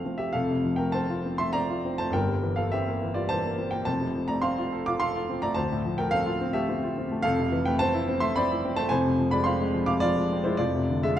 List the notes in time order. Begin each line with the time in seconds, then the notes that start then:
Already playing: F1 F2 F3 A3 C4 A4 F5
0.05 F3 A3 C4
0.18 G4 E5
0.33 F1 F2 A4 F5
0.50 C3
0.65 F3
0.76 A3 A#4 G5
0.92 C4 C5 A5
1.10 F4
1.26 C4
1.38 A3 E5 C6
1.53 C4 D5 A#5
1.70 F4
1.85 C4
1.98 A3 C5 A5
2.10 G1 G2 A#4 G5
2.28 G3
2.43 E3
2.56 A#3 A4 F5
2.72 C4 G4 E5
2.88 A#3
3.02 E3
3.14 G3 F4 D5
3.29 E3 C5 A5
3.45 A#3
3.58 C4
3.71 A#3 A#4 G5
3.85 F1 F2 C5 A5
4.01 C3
4.15 F3
4.28 A3 D5 A#5
4.42 C4 F5 C6
4.59 F4
4.72 A4
4.86 F4 F5 D6
5.00 A4 F5 C6
5.16 F4
5.30 C4
5.42 A3 D5 A#5
5.55 D2 C5 A5
5.72 A2
5.85 F3
5.98 A3 A#4 G5
6.11 C4 A4 F5
6.26 F4
6.41 C4
6.53 A3 G4 E5
6.69 C4
6.84 F4
6.98 C4
7.12 A3
7.22 F1 F2 A4 F5
7.40 C3
7.52 E3
7.66 A3 B4 G5
7.79 C4 C5 A5
7.95 E4
8.09 C4
8.20 A3 E5 C6
8.36 C4 D5 B5
8.52 E4
8.65 C4
8.76 A3 C5 A5
8.89 F1 F2 C5 G#5
9.06 C3
9.20 F3
9.31 G#3 D5 B5
9.44 C4 F5 C6
9.61 G#3
9.74 F3
9.86 C3 F5 D6
10.00 F3 F4 D5
10.17 G#3
10.33 C4
10.44 G#3 E4 C5
10.57 F1 F2 F4 D5
10.75 C3
10.90 D3
11.03 G#3 G#4 E5